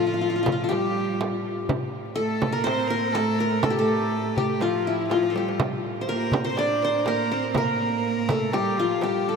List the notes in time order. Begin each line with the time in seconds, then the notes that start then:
Already playing: A2 F3 F4
0.07 F4
0.14 F4
0.21 F4, darbuka ka
0.30 F4
0.36 F4
0.43 F4, frame drum
0.48 darbuka dum
0.52 F4
0.61 F4 A4, darbuka ka
0.69 G3 G4, darbuka tek, frame drum
0.97 darbuka ka
1.21 darbuka tek, frame drum
1.69 A2, darbuka dum, frame drum
2.06 darbuka ka
2.16 A3 A4, darbuka ka
2.42 frame drum, darbuka dum
2.52 A#3 A#4, darbuka ka
2.64 C4 C5, darbuka tek, frame drum
2.88 A#3 A#4, darbuka ka
3.12 A3 A4, darbuka tek, frame drum
3.39 A#4
3.62 A3 A4, frame drum, darbuka dum
3.70 G4
3.79 A3 A4
3.89 darbuka ka
4.00 darbuka ka
4.36 G4, darbuka dum
4.49 darbuka ka
4.61 F3 F4, darbuka tek, frame drum
4.73 darbuka ka
4.86 E4, darbuka ka
5.09 F3 F4, darbuka tek, frame drum
5.23 darbuka ka
5.30 A4
5.34 G3 G4, darbuka tek
5.49 darbuka ka
5.60 A2, darbuka dum, frame drum
5.97 darbuka ka
6.01 C5
6.09 A#3 A#4
6.32 darbuka dum, frame drum
6.44 C4 C5, darbuka ka
6.56 D4 D5, darbuka tek, frame drum
6.82 C5, darbuka ka
6.98 C5
7.05 A#3 A#4, darbuka tek, frame drum
7.32 C4 C5
7.53 A#3 A#4, frame drum, darbuka dum
7.58 A#4
7.92 darbuka ka
8.05 darbuka ka
8.29 A3 A4, frame drum, darbuka dum
8.42 darbuka ka
8.53 G3 G4, darbuka tek, frame drum
8.77 F3 F4, darbuka ka
9.01 G3 G4, darbuka tek, frame drum
9.29 A4